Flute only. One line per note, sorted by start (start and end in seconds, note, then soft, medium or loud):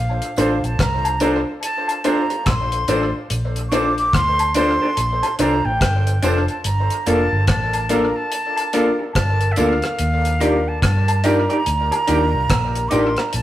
0.00 0.66 F5 medium
0.65 0.83 A5 medium
0.81 1.22 A#5 loud
1.23 1.32 A#5 medium
1.64 2.02 A5 loud
2.07 2.50 A#5 medium
2.48 3.15 C6 medium
3.69 3.75 C#6 medium
3.73 3.98 D6 loud
3.98 4.16 D6 loud
4.15 4.56 C6 loud
4.57 5.36 C6 loud
5.40 5.67 A#5 medium
5.65 6.25 G5 medium
6.24 6.49 A5 medium
6.50 6.64 A5 medium
6.65 7.09 A#5 loud
7.07 7.49 A5 loud
7.49 7.92 A5 loud
7.91 8.18 A#5 medium
8.16 8.84 A5 loud
9.16 9.53 A5 medium
9.52 9.59 E5 medium
9.58 10.70 F5 medium
10.68 10.83 A5 medium
10.83 11.27 A5 medium
11.25 12.90 A#5 loud
12.89 12.94 D6 medium
12.93 13.20 C6 medium
13.19 13.36 A#5 medium
13.35 13.42 A5 medium